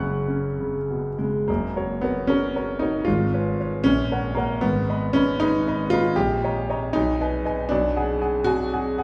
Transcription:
Already playing: F#1 F#2 F#5 C#6 F#6
0.00 C#3
0.28 C#4
0.60 C#3
0.90 B2
1.18 C#3 G#3
1.48 F#1 F#2 A#3
1.76 F#4 A#4 C#5
2.01 B3 F#4 A#4 C#5
2.27 C#4 F#4 A#4 C#5
2.56 F#4 A#4 C#5
2.79 D#4 F#4 A#4 C#5
3.05 G#1 F4
3.34 B4 C#5
3.60 B4 C#5
3.84 A#1 C#4
4.12 A#4 C#5 F#5
4.35 A#3 A#4 C#5 F#5
4.61 G#1 B3
4.89 B4 D#5 B5
5.13 C#4 B4 D#5 B5
5.40 D#4 B4 D#5 B5
5.67 B4 D#5 B5
5.90 F4 B4 D#5 B5
6.16 A#1 G4
6.44 C#5 D#5 A#5
6.70 C#5 D#5 A#5
6.93 B1 D#4
7.21 B4 D#5 G#5
7.45 B4 D#5 G#5
7.69 B1 D4
7.96 G#4 F#5 G#5
8.21 G#4 F#5 G#5
8.44 F#4 G#4 F#5 G#5
8.73 G#4 F#5 G#5
8.98 G#4 F#5 G#5

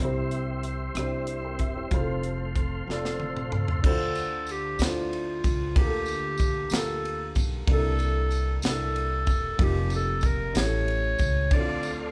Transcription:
Already playing: D4 A#4
0.00 C2 C3 G3 C4 E4 G4 C5, kick
0.31 closed hi-hat
0.63 closed hi-hat
0.95 C2 C4 D4 G4, cross-stick, closed hi-hat
0.99 E4 C5
1.27 closed hi-hat
1.44 A#4 G5
1.59 E1 G4 E5, kick, closed hi-hat
1.76 E4 C5
1.90 F1 A3 C4 F4 G#4 C5, kick, closed hi-hat
1.99 A4
2.23 closed hi-hat
2.56 kick, closed hi-hat
2.87 F1 C4 F4 A4, snare
2.91 D5
3.05 snare
3.20 high tom
3.37 mid tom
3.51 C#2 A4, mid tom
3.68 floor tom
3.82 D2 D3 D4 E4 A4 C5, kick, crash
3.90 F4
4.15 ride, tambourine
4.47 ride, tambourine
4.51 G4
4.79 D2 D4 E4 A4 C5, snare, ride, tambourine
4.83 F4
5.13 ride
5.44 C#2, kick, ride, tambourine
5.75 D2 D3 A#3 F4 G4 G#4, kick, ride
5.86 A4
6.06 ride, tambourine
6.38 kick, ride, tambourine
6.70 D2 A#3 F4 G4, snare, ride, tambourine
6.75 A4
7.05 ride
7.35 B1, kick, ride, tambourine
7.67 C2 C3 A#3 D4 D#4, kick, ride
7.71 A4
7.76 E4
7.99 ride, tambourine
8.30 ride, tambourine
8.62 C2 A#3 D4 E4, snare, ride, tambourine
8.67 A4
8.96 ride
9.27 E1, kick, ride, tambourine
9.58 F1 A#3 D#4 F4 G4, kick, ride
9.64 G4
9.90 ride, tambourine
9.96 A4
10.21 kick, ride, tambourine
10.26 A#4
10.54 A1 A2 C#4 E4 G4 G#4, snare, ride, tambourine
10.58 C#5
10.64 A4
10.88 ride
11.18 C#2, kick, ride, tambourine
11.51 D2 D3 A3 C4 D4 E4 F4 A4 C5 D5, kick, ride
11.60 F4
11.83 ride, tambourine

